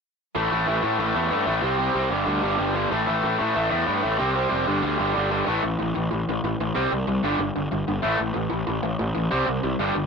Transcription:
0.35 A1 A2 E3 A3
0.52 A1 A2 E3 A3
0.66 A1 A2 E3 A3
0.82 A2 E3 A3
0.99 A1 A2 E3 A3
1.15 E2 A2 E3 A3
1.31 G2 A2 E3 A3
1.47 A1 A2 E3 A3
1.62 C2 C3 G3 C4
1.78 C3 G3 C4
1.94 C2 C3 G3 C4
2.10 G1 G2 D3 G3
2.26 D2 G2 D3 G3
2.42 G1 G2 D3 G3
2.58 G1 G2 D3 G3
2.74 G2 D3 G3
2.90 A1 A2 E3 A3
3.07 A1 A2 E3 A3
3.23 A1 A2 E3 A3
3.39 A2 E3 A3
3.55 A1 A2 E3 A3
3.70 E2 A2 E3 A3
3.86 G2 A2 E3 A3
4.03 A1 A2 E3 A3
4.19 C2 C3 G3 C4
4.35 C3 G3 C4
4.49 F1 C3 G3 C4
4.66 G1 G2 D3 G3
4.82 D2 G2 D3 G3
4.98 G1 G2 D3 G3
5.14 G1 G2 D3 G3
5.31 G2 D3 G3
5.46 A1 A2 E3 A3
5.64 A1 A2 E3
5.80 A1 A2 E3
5.95 A1 A2 E3
6.11 A1 A2 E3
6.29 A1 A2 E3
6.44 A1 A2 E3
6.60 A1 A2 E3
6.75 C2 C3 G3 C4
6.92 C2 C3 G3
7.08 C2 C3 G3
7.24 G1 G2 D3 G3
7.39 G1 G2 D3
7.56 G1 G2 D3
7.71 G1 G2 D3
7.88 G1 G2 D3
8.02 A1 A2 E3 A3
8.18 A1 A2 E3
8.34 A1 A2 E3
8.50 A1 A2 E3
8.67 A1 A2 E3
8.83 A1 A2 E3
8.99 A1 A2 E3
9.15 A1 A2 E3
9.31 C2 C3 G3 C4
9.47 C2 C3 G3
9.64 C2 C3 G3
9.79 G1 G2 D3 G3
9.95 G1 G2 D3

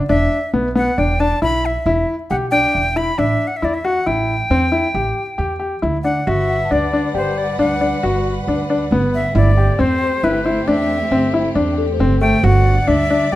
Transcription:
Already playing: F#5
0.09 E1 D4 E5
0.53 B1 B3
0.75 B3 F#5
0.98 E1 D4 G5
1.20 D4 A5
1.42 B1 E4 B5
1.66 E5
1.86 E1 E4
2.30 B1 G4 F#5
2.51 D4 G5
2.73 E1 E5
2.96 E4 B5
3.18 A1 D4 E5
3.47 F#5
3.57 E5
3.62 E2 E4 D5
3.74 E5
3.85 F#4 F#5
4.06 A1 E4 G5
4.50 E2 C4
4.72 E4
4.94 A1 G4
5.38 E2 G4
5.60 G4
5.82 D2 E4
6.04 D4 F#5
6.27 G1 G3 F#4 B4 E5 F#5
6.49 F#5
6.65 A5
6.71 D2 D4 D5
6.93 D4
7.14 G1 G4 C5 D5
7.38 D5
7.58 D2 D4 F#5
7.81 D4
8.03 G1 F#4
8.47 D2 D4
8.70 D4
8.91 G1 B3
9.14 E5
9.35 G1 A3 C4 E4 G4 D5
9.57 G4
9.79 E2 C4 C5
10.23 G1 E4 B4
10.45 E4 C5
10.68 E2 D4 E5
11.11 G1 C4
11.34 E4
11.55 E2 D4
11.78 A4
11.94 C5
11.99 G1 C4
12.21 A3 G5
12.43 G1 G3 D4 F#4 D5 F#5
12.87 D2 D4 E5
13.10 D4 E5
13.32 G1 G4 D5

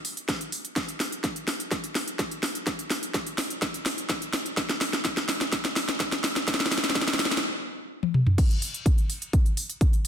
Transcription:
0.05 open hi-hat
0.17 closed hi-hat
0.29 kick, snare, closed hi-hat
0.41 closed hi-hat
0.52 open hi-hat
0.65 closed hi-hat
0.76 kick, snare, closed hi-hat
0.88 closed hi-hat
1.00 snare, open hi-hat
1.12 closed hi-hat
1.24 kick, snare, closed hi-hat
1.36 closed hi-hat
1.48 snare, open hi-hat
1.60 closed hi-hat
1.71 kick, snare, closed hi-hat
1.84 closed hi-hat
1.95 snare, open hi-hat
2.08 closed hi-hat
2.19 kick, snare, closed hi-hat
2.31 closed hi-hat
2.43 snare, open hi-hat
2.55 closed hi-hat
2.67 kick, snare, closed hi-hat
2.79 closed hi-hat
2.90 snare, open hi-hat
3.03 closed hi-hat
3.14 kick, snare, closed hi-hat
3.27 closed hi-hat
3.38 snare, open hi-hat
3.50 closed hi-hat
3.62 kick, snare, closed hi-hat
3.74 closed hi-hat
3.86 snare, open hi-hat
3.98 closed hi-hat
4.10 kick, snare, closed hi-hat
4.22 closed hi-hat
4.33 snare, open hi-hat
4.46 closed hi-hat
4.57 kick, snare, closed hi-hat
4.70 snare, closed hi-hat
4.81 snare, open hi-hat
4.93 snare, closed hi-hat
5.05 kick, snare, closed hi-hat
5.17 snare, closed hi-hat
5.29 snare, open hi-hat
5.41 snare, closed hi-hat
5.52 kick, snare, closed hi-hat
5.65 snare, closed hi-hat
5.76 snare, open hi-hat
5.89 snare, closed hi-hat
6.00 kick, snare, closed hi-hat
6.12 snare, closed hi-hat
6.24 snare, open hi-hat
6.36 snare, closed hi-hat
6.48 kick, snare, closed hi-hat
6.54 snare
6.60 snare, closed hi-hat
6.66 snare
6.71 snare, open hi-hat
6.78 snare
6.84 snare, closed hi-hat
6.90 snare
6.95 kick, snare, closed hi-hat
7.01 snare
7.08 snare, closed hi-hat
7.13 snare
7.19 snare, open hi-hat
7.25 snare
7.31 snare, closed hi-hat
7.37 snare
8.03 high tom
8.14 mid tom
8.27 mid tom
8.38 kick, closed hi-hat, crash
8.50 closed hi-hat
8.62 open hi-hat
8.74 closed hi-hat
8.86 kick, closed hi-hat
8.98 closed hi-hat
9.10 open hi-hat
9.22 closed hi-hat
9.33 kick, closed hi-hat
9.46 closed hi-hat
9.57 open hi-hat
9.70 closed hi-hat
9.81 kick, closed hi-hat
9.93 closed hi-hat

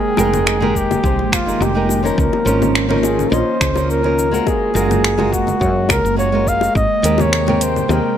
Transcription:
Already playing: D#3 G#3 A#3 D#4 G4 G#4 A#4 G5
0.17 F1 G#3 D#4 A#4 G5, high bongo, cabasa
0.34 low conga, cabasa
0.46 finger snap, high bongo, cabasa
0.60 G#3 D#4 G4 A#4, low conga
0.75 G4, kick, cabasa
0.91 high bongo, low conga, cabasa
1.03 C2 G#3 D#4 G4 C5, kick, cabasa
1.19 high bongo
1.32 F1 F4, finger snap, kick, cabasa
1.46 G#3 D#4 G4 A#4, cabasa
1.60 F1 G4, high bongo, cabasa
1.75 G#3 D#4 G4 A#4
1.89 high bongo, cabasa
2.03 F3 C#4 D#4 A#4, cabasa
2.18 C#2 C#4 F4 A#4, kick, cabasa
2.33 high bongo
2.45 G#1 F3 C#4 D#4 A#4, cabasa
2.62 high bongo, low conga, cabasa
2.75 finger snap, cabasa
2.89 F3 C#4 D#4 A#4, low conga
3.03 G#4, high bongo, cabasa
3.19 low conga, cabasa
3.30 A#1 F3 C#4 D#4 C5 D#5, high bongo, cabasa
3.61 C#2, finger snap, kick, cabasa
3.74 F3 C#4 D#4 A#4, high bongo, cabasa
3.90 A#4, cabasa
4.03 F3 C#4 D#4 A#4, high bongo
4.19 cabasa
4.31 G#3 F4 F#4 A#4, cabasa
4.46 G#3 G#4, kick, high bongo, cabasa
4.74 F#1 G#3 F4 F#4 A#4, high bongo, cabasa
4.91 low conga, cabasa
5.04 finger snap, cabasa
5.18 G#3 F4 F#4 A#4, high bongo, low conga
5.32 F#4, kick, cabasa
5.47 high bongo, low conga, cabasa
5.60 F#2 G#3 F4 F#4 C#5, kick, cabasa
5.89 C#2 A#4, finger snap, kick, high bongo, cabasa
6.05 F#1, cabasa
6.16 G#3 F4 F#4 C#5, high bongo, cabasa
6.32 G#3 F4 F#4 A#4
6.47 F5, kick, cabasa
6.61 high bongo, cabasa
6.75 G#1 C3 A#3 D#5 G5, kick, high bongo, cabasa
7.02 D#2 G#3 C4 G4 A#4, closed hi-hat, cabasa
7.18 C#5, high bongo, low conga, cabasa
7.33 finger snap, cabasa
7.47 G#3 C4 G4 A#4, high bongo, low conga
7.61 C5, closed hi-hat, cabasa
7.76 low conga, cabasa
7.88 D#2 G#3 C4 G4 A#4 C5, high bongo, cabasa

